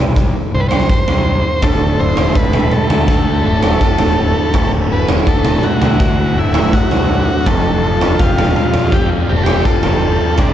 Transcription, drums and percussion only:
0.16 kick medium
0.71 floor tom medium
0.90 kick medium
1.08 floor tom medium
1.62 kick loud
1.62 floor tom medium
2.17 floor tom medium
2.35 kick loud
2.53 floor tom medium
2.53 mid tom medium
2.71 mid tom medium
2.90 floor tom medium
2.90 mid tom medium
3.08 kick loud
3.63 floor tom medium
3.81 kick medium
3.98 floor tom medium
4.54 kick medium
4.54 floor tom medium
5.09 floor tom medium
5.27 kick medium
5.45 floor tom medium
5.45 mid tom medium
5.63 mid tom medium
5.82 floor tom medium
5.82 mid tom medium
6.00 kick loud
6.54 floor tom medium
6.73 kick medium
6.91 floor tom medium
7.46 kick medium
7.46 floor tom medium
8.01 floor tom medium
8.19 kick loud
8.38 floor tom medium
8.38 mid tom medium
8.56 mid tom medium
8.74 floor tom medium
8.74 mid tom medium
8.92 kick loud
9.46 floor tom medium
9.65 kick medium
9.83 floor tom medium
10.38 kick loud
10.38 floor tom medium

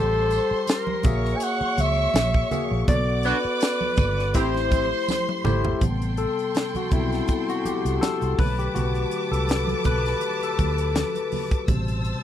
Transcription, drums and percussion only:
0.14 muted conga soft
0.31 closed hi-hat medium
0.31 tambourine soft
0.67 snare loud
0.67 closed hi-hat medium
0.67 tambourine medium
0.67 muted conga soft
0.87 muted conga soft
0.87 high conga medium
1.03 kick loud
1.03 closed hi-hat medium
1.03 tambourine soft
1.03 low conga medium
1.25 snare soft
1.40 closed hi-hat loud
1.40 tambourine soft
1.61 muted conga soft
1.77 closed hi-hat medium
1.77 tambourine soft
1.77 high conga medium
2.14 snare loud
2.14 closed hi-hat medium
2.14 tambourine medium
2.14 muted conga soft
2.14 high conga medium
2.34 kick medium
2.51 closed hi-hat medium
2.51 tambourine soft
2.51 high conga medium
2.51 low conga medium
2.88 kick loud
2.88 closed hi-hat medium
2.88 tambourine soft
2.88 muted conga soft
2.88 low conga medium
3.23 closed hi-hat medium
3.23 tambourine soft
3.61 snare loud
3.61 closed hi-hat medium
3.61 tambourine medium
3.81 high conga medium
3.97 kick loud
3.97 closed hi-hat medium
3.97 tambourine soft
3.97 low conga medium
4.19 snare soft
4.34 kick medium
4.34 closed hi-hat medium
4.34 tambourine soft
4.34 muted conga soft
4.54 snare soft
4.54 muted conga soft
4.71 kick medium
4.71 closed hi-hat medium
4.71 high conga medium
5.08 snare medium
5.08 tambourine medium
5.08 muted conga soft
5.08 high conga medium
5.29 high tom medium
5.45 mid tom medium
5.45 tambourine soft
5.45 high conga medium
5.45 low conga medium
5.65 floor tom medium
5.81 kick medium
5.81 closed hi-hat medium
5.81 low conga medium
6.02 closed hi-hat soft
6.02 muted conga soft
6.17 closed hi-hat medium
6.39 closed hi-hat soft
6.55 snare loud
6.55 closed hi-hat medium
6.55 muted conga soft
6.75 closed hi-hat soft
6.75 muted conga soft
6.75 high conga medium
6.91 kick medium
6.91 closed hi-hat medium
6.91 low conga medium
7.12 snare soft
7.12 closed hi-hat soft
7.28 kick medium
7.28 closed hi-hat medium
7.28 muted conga soft
7.48 closed hi-hat medium
7.48 muted conga soft
7.66 closed hi-hat medium
7.66 high conga medium
7.86 closed hi-hat medium
8.02 snare loud
8.02 closed hi-hat medium
8.02 high conga medium
8.21 closed hi-hat soft
8.21 muted conga soft
8.39 kick loud
8.39 open hi-hat medium
8.39 high conga soft
8.39 low conga medium
8.59 closed hi-hat soft
8.76 closed hi-hat medium
8.76 muted conga soft
8.76 low conga medium
8.95 closed hi-hat soft
8.95 muted conga soft
9.11 closed hi-hat medium
9.33 closed hi-hat soft
9.48 snare loud
9.48 closed hi-hat medium
9.48 muted conga soft
9.67 closed hi-hat soft
9.67 muted conga soft
9.67 high conga medium
9.84 kick loud
9.84 closed hi-hat medium
9.84 low conga medium
10.06 snare soft
10.06 closed hi-hat soft
10.21 closed hi-hat medium
10.21 muted conga soft
10.41 closed hi-hat medium
10.41 muted conga soft
10.58 kick medium
10.58 closed hi-hat medium
10.58 high conga medium
10.78 closed hi-hat medium
10.95 snare loud
10.95 closed hi-hat medium
10.95 muted conga soft
10.95 high conga medium
11.15 closed hi-hat soft
11.15 muted conga soft
11.32 open hi-hat medium
11.32 high conga soft
11.32 low conga medium
11.51 kick medium
11.51 closed hi-hat soft
11.68 kick loud
11.68 closed hi-hat medium
11.68 muted conga soft
11.68 low conga medium
11.88 closed hi-hat medium
11.88 muted conga soft
12.05 closed hi-hat medium

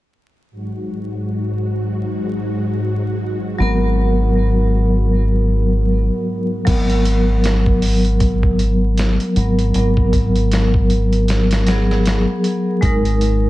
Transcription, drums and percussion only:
6.67 kick loud
6.67 closed hi-hat medium
6.67 crash medium
6.90 closed hi-hat soft
7.05 closed hi-hat medium
7.44 snare loud
7.44 closed hi-hat medium
7.66 kick medium
7.82 open hi-hat medium
8.05 closed hi-hat soft
8.20 kick loud
8.20 closed hi-hat medium
8.43 kick medium
8.59 closed hi-hat medium
8.97 snare loud
8.97 closed hi-hat medium
9.20 closed hi-hat soft
9.36 closed hi-hat medium
9.59 closed hi-hat soft
9.74 closed hi-hat medium
9.97 kick medium
10.13 kick medium
10.13 closed hi-hat medium
10.36 closed hi-hat soft
10.52 snare loud
10.52 closed hi-hat medium
10.74 kick medium
10.90 closed hi-hat medium
11.13 closed hi-hat soft
11.28 snare loud
11.28 closed hi-hat medium
11.51 snare medium
11.51 closed hi-hat medium
11.67 snare loud
11.67 closed hi-hat medium
11.91 snare soft
12.06 snare loud
12.06 closed hi-hat medium
12.44 closed hi-hat medium
12.82 kick loud
12.82 closed hi-hat medium
13.05 closed hi-hat soft
13.21 closed hi-hat medium

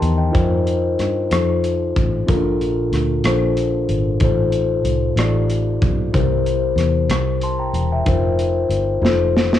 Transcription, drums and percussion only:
0.02 closed hi-hat soft
0.35 kick medium
0.35 closed hi-hat medium
0.67 closed hi-hat soft
0.99 cross-stick soft
0.99 closed hi-hat soft
1.31 cross-stick medium
1.31 closed hi-hat medium
1.64 closed hi-hat soft
1.96 kick medium
1.96 closed hi-hat soft
2.28 kick medium
2.28 closed hi-hat medium
2.61 closed hi-hat soft
2.93 cross-stick soft
2.93 closed hi-hat soft
3.24 cross-stick medium
3.24 closed hi-hat medium
3.57 closed hi-hat soft
3.89 closed hi-hat soft
4.20 kick medium
4.20 closed hi-hat medium
4.52 closed hi-hat soft
4.85 closed hi-hat soft
5.17 cross-stick medium
5.17 closed hi-hat medium
5.50 closed hi-hat soft
5.82 kick medium
5.82 closed hi-hat soft
6.14 kick medium
6.14 closed hi-hat medium
6.46 closed hi-hat soft
6.78 cross-stick soft
6.78 closed hi-hat soft
7.10 cross-stick medium
7.10 closed hi-hat medium
7.41 closed hi-hat soft
7.74 closed hi-hat soft
8.06 kick medium
8.06 closed hi-hat medium
8.39 closed hi-hat soft
8.70 closed hi-hat soft
9.05 snare soft
9.37 snare medium
9.53 snare medium

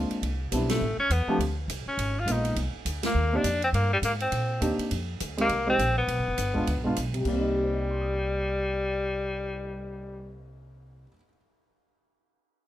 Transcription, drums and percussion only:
0.11 ride soft
0.23 ride medium
0.52 hi-hat pedal medium
0.52 ride medium
0.69 snare medium
0.69 ride medium
1.10 hi-hat pedal medium
1.10 ride medium
1.40 ride medium
1.70 hi-hat pedal medium
1.70 ride medium
1.99 ride medium
2.28 hi-hat pedal medium
2.28 ride medium
2.45 ride soft
2.56 ride medium
2.86 hi-hat pedal medium
2.86 ride medium
3.03 snare medium
3.03 ride medium
3.44 hi-hat pedal medium
3.44 ride medium
3.62 ride soft
3.74 ride medium
4.03 hi-hat pedal medium
4.03 ride medium
4.20 ride soft
4.32 ride medium
4.62 hi-hat pedal medium
4.62 ride medium
4.79 ride soft
4.91 ride medium
5.20 hi-hat pedal medium
5.20 ride medium
5.38 ride soft
5.49 ride medium
5.79 hi-hat pedal medium
5.79 ride medium
6.08 ride medium
6.38 hi-hat pedal medium
6.38 ride medium
6.55 kick soft
6.67 ride medium
6.96 hi-hat pedal medium
6.96 ride medium
7.14 ride soft
7.25 kick soft
7.25 crash medium
7.43 cymbal swell soft

